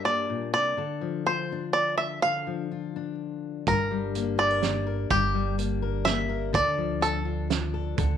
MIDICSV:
0, 0, Header, 1, 5, 480
1, 0, Start_track
1, 0, Tempo, 480769
1, 772, Time_signature, 3, 2, 24, 8
1, 8162, End_track
2, 0, Start_track
2, 0, Title_t, "Five-string banjo"
2, 0, Program_c, 0, 105
2, 51, Note_on_c, 0, 74, 70
2, 523, Note_off_c, 0, 74, 0
2, 535, Note_on_c, 0, 74, 75
2, 1263, Note_on_c, 0, 72, 68
2, 1277, Note_off_c, 0, 74, 0
2, 1729, Note_on_c, 0, 74, 75
2, 1754, Note_off_c, 0, 72, 0
2, 1956, Note_off_c, 0, 74, 0
2, 1972, Note_on_c, 0, 76, 72
2, 2198, Note_off_c, 0, 76, 0
2, 2220, Note_on_c, 0, 77, 74
2, 3140, Note_off_c, 0, 77, 0
2, 3672, Note_on_c, 0, 70, 81
2, 4345, Note_off_c, 0, 70, 0
2, 4381, Note_on_c, 0, 74, 93
2, 5099, Note_on_c, 0, 67, 74
2, 5120, Note_off_c, 0, 74, 0
2, 5543, Note_off_c, 0, 67, 0
2, 6040, Note_on_c, 0, 76, 97
2, 6534, Note_off_c, 0, 76, 0
2, 6538, Note_on_c, 0, 74, 86
2, 7012, Note_on_c, 0, 69, 66
2, 7028, Note_off_c, 0, 74, 0
2, 7457, Note_off_c, 0, 69, 0
2, 8162, End_track
3, 0, Start_track
3, 0, Title_t, "Steel-string acoustic guitar"
3, 0, Program_c, 1, 25
3, 0, Note_on_c, 1, 43, 59
3, 0, Note_on_c, 1, 55, 49
3, 0, Note_on_c, 1, 62, 48
3, 0, Note_on_c, 1, 70, 54
3, 59, Note_on_c, 1, 58, 43
3, 290, Note_off_c, 1, 43, 0
3, 294, Note_on_c, 1, 46, 49
3, 529, Note_on_c, 1, 48, 50
3, 533, Note_off_c, 1, 46, 0
3, 741, Note_off_c, 1, 55, 0
3, 747, Note_off_c, 1, 70, 0
3, 764, Note_off_c, 1, 48, 0
3, 768, Note_on_c, 1, 50, 60
3, 777, Note_off_c, 1, 58, 0
3, 779, Note_on_c, 1, 69, 54
3, 1011, Note_on_c, 1, 53, 52
3, 1261, Note_off_c, 1, 62, 0
3, 1265, Note_on_c, 1, 65, 48
3, 1517, Note_on_c, 1, 62, 44
3, 2185, Note_off_c, 1, 50, 0
3, 2191, Note_off_c, 1, 69, 0
3, 2193, Note_off_c, 1, 65, 0
3, 2234, Note_on_c, 1, 50, 63
3, 2240, Note_on_c, 1, 69, 54
3, 2450, Note_off_c, 1, 53, 0
3, 2462, Note_on_c, 1, 53, 46
3, 2709, Note_on_c, 1, 65, 49
3, 2951, Note_off_c, 1, 62, 0
3, 2955, Note_on_c, 1, 62, 45
3, 3635, Note_off_c, 1, 65, 0
3, 3638, Note_off_c, 1, 50, 0
3, 3638, Note_off_c, 1, 62, 0
3, 3641, Note_off_c, 1, 69, 0
3, 3661, Note_off_c, 1, 53, 0
3, 3661, Note_on_c, 1, 43, 65
3, 3669, Note_on_c, 1, 62, 52
3, 3903, Note_on_c, 1, 55, 55
3, 4149, Note_on_c, 1, 58, 53
3, 4369, Note_on_c, 1, 67, 55
3, 4496, Note_off_c, 1, 67, 0
3, 4496, Note_on_c, 1, 70, 50
3, 4600, Note_off_c, 1, 58, 0
3, 4612, Note_on_c, 1, 58, 57
3, 4846, Note_off_c, 1, 70, 0
3, 4858, Note_on_c, 1, 70, 56
3, 5068, Note_off_c, 1, 70, 0
3, 5070, Note_off_c, 1, 55, 0
3, 5087, Note_off_c, 1, 43, 0
3, 5098, Note_on_c, 1, 43, 67
3, 5101, Note_off_c, 1, 62, 0
3, 5105, Note_on_c, 1, 62, 60
3, 5332, Note_on_c, 1, 55, 59
3, 5559, Note_off_c, 1, 58, 0
3, 5571, Note_on_c, 1, 58, 53
3, 5814, Note_on_c, 1, 70, 58
3, 6043, Note_off_c, 1, 58, 0
3, 6055, Note_on_c, 1, 58, 57
3, 6269, Note_off_c, 1, 70, 0
3, 6281, Note_on_c, 1, 70, 60
3, 6498, Note_off_c, 1, 70, 0
3, 6502, Note_off_c, 1, 55, 0
3, 6517, Note_on_c, 1, 50, 76
3, 6528, Note_on_c, 1, 69, 68
3, 6533, Note_off_c, 1, 58, 0
3, 6534, Note_off_c, 1, 43, 0
3, 6764, Note_on_c, 1, 53, 60
3, 6999, Note_off_c, 1, 62, 0
3, 6999, Note_on_c, 1, 62, 58
3, 7239, Note_on_c, 1, 65, 57
3, 7483, Note_off_c, 1, 62, 0
3, 7487, Note_on_c, 1, 62, 64
3, 7713, Note_off_c, 1, 69, 0
3, 7725, Note_on_c, 1, 69, 61
3, 7931, Note_off_c, 1, 50, 0
3, 7933, Note_off_c, 1, 65, 0
3, 7937, Note_off_c, 1, 69, 0
3, 7961, Note_on_c, 1, 50, 75
3, 7970, Note_on_c, 1, 69, 64
3, 8162, Note_off_c, 1, 50, 0
3, 8162, Note_off_c, 1, 53, 0
3, 8162, Note_off_c, 1, 62, 0
3, 8162, Note_off_c, 1, 69, 0
3, 8162, End_track
4, 0, Start_track
4, 0, Title_t, "Upright bass"
4, 0, Program_c, 2, 32
4, 3666, Note_on_c, 2, 31, 72
4, 5072, Note_off_c, 2, 31, 0
4, 5096, Note_on_c, 2, 31, 70
4, 6504, Note_off_c, 2, 31, 0
4, 6532, Note_on_c, 2, 38, 76
4, 7939, Note_off_c, 2, 38, 0
4, 7970, Note_on_c, 2, 38, 75
4, 8162, Note_off_c, 2, 38, 0
4, 8162, End_track
5, 0, Start_track
5, 0, Title_t, "Drums"
5, 3662, Note_on_c, 9, 42, 47
5, 3663, Note_on_c, 9, 36, 78
5, 3762, Note_off_c, 9, 42, 0
5, 3763, Note_off_c, 9, 36, 0
5, 4142, Note_on_c, 9, 42, 48
5, 4242, Note_off_c, 9, 42, 0
5, 4617, Note_on_c, 9, 38, 61
5, 4617, Note_on_c, 9, 42, 45
5, 4717, Note_off_c, 9, 38, 0
5, 4717, Note_off_c, 9, 42, 0
5, 5093, Note_on_c, 9, 42, 43
5, 5097, Note_on_c, 9, 36, 81
5, 5193, Note_off_c, 9, 42, 0
5, 5197, Note_off_c, 9, 36, 0
5, 5577, Note_on_c, 9, 42, 49
5, 5677, Note_off_c, 9, 42, 0
5, 6049, Note_on_c, 9, 38, 65
5, 6049, Note_on_c, 9, 42, 46
5, 6149, Note_off_c, 9, 38, 0
5, 6149, Note_off_c, 9, 42, 0
5, 6531, Note_on_c, 9, 36, 79
5, 6532, Note_on_c, 9, 42, 45
5, 6631, Note_off_c, 9, 36, 0
5, 6631, Note_off_c, 9, 42, 0
5, 7011, Note_on_c, 9, 42, 50
5, 7111, Note_off_c, 9, 42, 0
5, 7492, Note_on_c, 9, 38, 68
5, 7492, Note_on_c, 9, 42, 48
5, 7592, Note_off_c, 9, 38, 0
5, 7592, Note_off_c, 9, 42, 0
5, 7964, Note_on_c, 9, 42, 48
5, 7967, Note_on_c, 9, 36, 83
5, 8064, Note_off_c, 9, 42, 0
5, 8067, Note_off_c, 9, 36, 0
5, 8162, End_track
0, 0, End_of_file